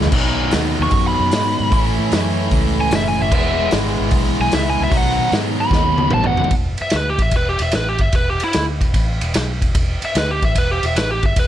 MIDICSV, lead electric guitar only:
0, 0, Header, 1, 2, 480
1, 0, Start_track
1, 0, Tempo, 398671
1, 169, Time_signature, 4, 2, 24, 8
1, 6888, Tempo, 403226
1, 13735, End_track
2, 0, Start_track
2, 0, Title_t, "Lead electric guitar"
2, 0, Program_c, 0, 29
2, 993, Note_on_c, 0, 85, 90
2, 1289, Note_off_c, 0, 85, 0
2, 1294, Note_on_c, 0, 83, 105
2, 2220, Note_off_c, 0, 83, 0
2, 3377, Note_on_c, 0, 80, 105
2, 3527, Note_off_c, 0, 80, 0
2, 3561, Note_on_c, 0, 76, 89
2, 3699, Note_off_c, 0, 76, 0
2, 3708, Note_on_c, 0, 80, 89
2, 3852, Note_off_c, 0, 80, 0
2, 3875, Note_on_c, 0, 76, 109
2, 4016, Note_off_c, 0, 76, 0
2, 4035, Note_on_c, 0, 76, 102
2, 4486, Note_off_c, 0, 76, 0
2, 5312, Note_on_c, 0, 80, 111
2, 5455, Note_off_c, 0, 80, 0
2, 5478, Note_on_c, 0, 76, 106
2, 5618, Note_off_c, 0, 76, 0
2, 5655, Note_on_c, 0, 80, 94
2, 5787, Note_off_c, 0, 80, 0
2, 5821, Note_on_c, 0, 76, 105
2, 5951, Note_off_c, 0, 76, 0
2, 5986, Note_on_c, 0, 78, 109
2, 6425, Note_off_c, 0, 78, 0
2, 6750, Note_on_c, 0, 83, 115
2, 7359, Note_off_c, 0, 83, 0
2, 7386, Note_on_c, 0, 81, 101
2, 7532, Note_off_c, 0, 81, 0
2, 7541, Note_on_c, 0, 78, 99
2, 7843, Note_off_c, 0, 78, 0
2, 8192, Note_on_c, 0, 76, 85
2, 8334, Note_off_c, 0, 76, 0
2, 8371, Note_on_c, 0, 71, 83
2, 8503, Note_off_c, 0, 71, 0
2, 8527, Note_on_c, 0, 67, 75
2, 8661, Note_off_c, 0, 67, 0
2, 8674, Note_on_c, 0, 76, 78
2, 8814, Note_off_c, 0, 76, 0
2, 8844, Note_on_c, 0, 71, 84
2, 8979, Note_off_c, 0, 71, 0
2, 8994, Note_on_c, 0, 67, 82
2, 9134, Note_off_c, 0, 67, 0
2, 9152, Note_on_c, 0, 76, 82
2, 9293, Note_off_c, 0, 76, 0
2, 9306, Note_on_c, 0, 71, 71
2, 9450, Note_off_c, 0, 71, 0
2, 9467, Note_on_c, 0, 67, 77
2, 9610, Note_off_c, 0, 67, 0
2, 9615, Note_on_c, 0, 76, 71
2, 9764, Note_off_c, 0, 76, 0
2, 9789, Note_on_c, 0, 71, 82
2, 9932, Note_off_c, 0, 71, 0
2, 9957, Note_on_c, 0, 67, 83
2, 10096, Note_off_c, 0, 67, 0
2, 10126, Note_on_c, 0, 64, 84
2, 10365, Note_off_c, 0, 64, 0
2, 12040, Note_on_c, 0, 76, 81
2, 12179, Note_off_c, 0, 76, 0
2, 12196, Note_on_c, 0, 71, 90
2, 12337, Note_off_c, 0, 71, 0
2, 12352, Note_on_c, 0, 67, 79
2, 12495, Note_off_c, 0, 67, 0
2, 12514, Note_on_c, 0, 76, 84
2, 12656, Note_off_c, 0, 76, 0
2, 12676, Note_on_c, 0, 71, 80
2, 12817, Note_off_c, 0, 71, 0
2, 12831, Note_on_c, 0, 67, 86
2, 12975, Note_off_c, 0, 67, 0
2, 13007, Note_on_c, 0, 76, 90
2, 13129, Note_on_c, 0, 71, 94
2, 13144, Note_off_c, 0, 76, 0
2, 13284, Note_off_c, 0, 71, 0
2, 13300, Note_on_c, 0, 67, 70
2, 13450, Note_off_c, 0, 67, 0
2, 13479, Note_on_c, 0, 76, 90
2, 13620, Note_off_c, 0, 76, 0
2, 13640, Note_on_c, 0, 71, 86
2, 13735, Note_off_c, 0, 71, 0
2, 13735, End_track
0, 0, End_of_file